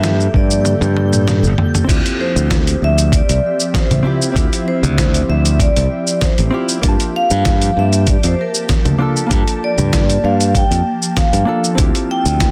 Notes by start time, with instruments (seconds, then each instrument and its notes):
Already playing: fingered electric bass G2, ambient pad F3 A#3 G4 A4, hollow-body jazz guitar A#3 D4 F4 A4, vibraphone E5, synth texture G6
0.04 snare, shaker
0.20 shaker
0.34 fingered electric bass G2, vibraphone D5, kick
0.51 shaker
0.65 high tom, shaker
0.81 fingered electric bass G2, high tom, shaker
0.97 high tom
1.13 mid tom, shaker
1.28 snare, mid tom, shaker
1.43 fingered electric bass G1, shaker
1.58 mid tom
1.75 mid tom, shaker
1.84 ambient pad F3 C4 G4 E5, hollow-body jazz guitar C4 E4
1.89 fingered electric bass D2, hollow-body jazz guitar F4 G4, kick, closed hi-hat, crash, shaker
2.06 closed hi-hat, shaker
2.21 vibraphone C5
2.36 fingered electric bass D2, shaker
2.50 kick, snare, closed hi-hat, shaker
2.67 closed hi-hat, shaker
2.82 fingered electric bass D2, vibraphone E5
2.98 closed hi-hat, shaker
3.12 vibraphone D5, kick, closed hi-hat, shaker
3.29 fingered electric bass C2, closed hi-hat, shaker
3.60 shaker
3.74 vibraphone C5, kick, snare, closed hi-hat, shaker
3.91 fingered electric bass A1, closed hi-hat, low conga, shaker
4.03 hollow-body jazz guitar C4 E4 F4 G4
4.22 shaker
4.32 fingered electric bass D2, hollow-body jazz guitar C4 E4
4.36 hollow-body jazz guitar F4 G4, kick, closed hi-hat, shaker
4.53 closed hi-hat, shaker
4.68 vibraphone C5
4.83 fingered electric bass D2, low conga, shaker
4.98 kick, snare, closed hi-hat, shaker
5.14 closed hi-hat, shaker
5.29 fingered electric bass D2, vibraphone E5
5.45 closed hi-hat, shaker
5.60 vibraphone D5, kick, closed hi-hat, shaker
5.76 fingered electric bass C2, closed hi-hat, shaker
6.07 shaker
6.21 vibraphone C5, kick, snare, closed hi-hat, shaker
6.38 fingered electric bass A1, closed hi-hat, shaker
6.51 hollow-body jazz guitar C4 E4 F4 G4
6.69 shaker
6.82 fingered electric bass G2, ambient pad F3 A#3 A5, hollow-body jazz guitar A#3 D4, kick, closed hi-hat, shaker
6.86 hollow-body jazz guitar F4 A5
7.00 closed hi-hat, shaker
7.16 vibraphone F5
7.31 fingered electric bass G2, shaker
7.45 kick, snare, closed hi-hat, shaker
7.62 closed hi-hat, shaker
7.77 fingered electric bass G2, vibraphone E5
7.93 closed hi-hat, shaker
8.07 vibraphone D5, kick, closed hi-hat, shaker
8.23 fingered electric bass F2, vibraphone C5, closed hi-hat, shaker
8.41 vibraphone A#4
8.55 shaker
8.69 kick, snare, closed hi-hat, shaker
8.85 fingered electric bass D2, closed hi-hat, low conga, shaker
8.98 hollow-body jazz guitar A#3 D4 F4 A4
9.16 shaker
9.26 hollow-body jazz guitar A#3 D4
9.31 fingered electric bass G2, hollow-body jazz guitar F4 A4, kick, closed hi-hat, shaker
9.48 closed hi-hat, shaker
9.64 vibraphone D5
9.78 fingered electric bass G2, low conga, shaker
9.93 kick, snare, closed hi-hat, shaker
10.10 closed hi-hat, shaker
10.24 fingered electric bass G2, vibraphone F5
10.41 closed hi-hat, shaker
10.55 vibraphone G5, kick, closed hi-hat, shaker
10.71 fingered electric bass F2, closed hi-hat, shaker
11.02 shaker
11.17 vibraphone F5, kick, snare, closed hi-hat, shaker
11.33 fingered electric bass G2, closed hi-hat, shaker
11.45 hollow-body jazz guitar A#3 D4 F4 A4
11.64 shaker
11.75 fingered electric bass D2, hollow-body jazz guitar C4 E4, ambient pad C4 G4 E5, kick, closed hi-hat, shaker
11.80 hollow-body jazz guitar F4 G4, synth texture E6
11.95 closed hi-hat, shaker
12.11 vibraphone G5
12.26 fingered electric bass D2, shaker
12.40 kick, snare, closed hi-hat, shaker